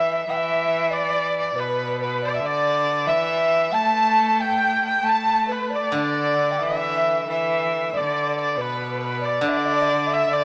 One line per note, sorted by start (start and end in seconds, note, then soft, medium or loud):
0.00 0.25 E3 medium
0.00 0.21 E5 medium
0.00 0.24 E5 loud
0.24 1.53 E3 medium
0.24 0.32 E5 medium
0.29 0.94 E5 medium
0.29 0.39 G5 medium
0.37 0.92 E5 medium
0.91 1.57 D5 medium
0.91 1.36 D5 loud
1.39 1.61 D5 medium
1.54 2.41 B2 medium
1.54 1.99 B4 medium
1.60 2.01 B4 medium
2.01 2.20 B4 medium
2.01 2.27 B4 medium
2.22 2.41 D5 medium
2.22 2.35 D5 medium
2.36 2.47 E5 medium
2.40 3.08 D3 medium
2.40 2.77 D5 medium
2.45 3.11 D5 loud
3.06 3.72 E3 loud
3.06 3.75 E5 medium
3.06 3.76 E5 loud
3.71 5.01 A3 loud
3.71 4.42 A5 loud
3.71 4.42 A5 medium
4.40 5.05 G5 medium
4.40 4.84 G5 loud
4.85 5.10 G5 loud
5.01 5.95 A3 medium
5.01 5.47 A5 medium
5.09 5.53 A5 loud
5.48 5.72 B4 medium
5.52 5.76 B4 medium
5.70 5.92 D5 medium
5.75 5.95 D5 medium
5.92 8.57 D3 medium
5.92 6.63 D3 medium
5.92 6.53 D5 medium
5.97 6.64 D5 medium
6.51 6.61 G5 medium
6.59 7.25 E3 medium
6.59 7.24 E5 medium
6.59 7.28 E5 loud
7.25 7.89 E3 medium
7.25 7.62 E5 medium
7.31 7.98 E5 medium
7.93 8.59 D3 medium
7.93 8.33 D5 medium
7.93 8.38 D5 medium
8.36 8.59 D5 medium
8.41 8.52 D5 medium
8.52 8.62 D5 medium
8.57 9.43 B2 medium
8.57 8.98 B4 medium
8.57 9.02 B4 medium
8.99 9.19 B4 medium
9.03 9.27 B4 medium
9.20 9.40 D5 medium
9.25 9.45 D5 medium
9.40 10.44 D3 medium
9.40 10.26 D3 medium
9.40 9.50 D5 medium
9.49 10.15 D5 loud
9.49 9.59 E5 medium
9.57 9.67 D5 medium
9.65 9.74 E5 medium
9.73 9.83 D5 medium
9.81 9.90 E5 medium
9.89 10.09 D5 medium
10.07 10.30 E5 medium
10.13 10.34 E5 loud
10.28 10.44 D3 loud
10.28 10.44 D5 medium
10.33 10.44 D5 loud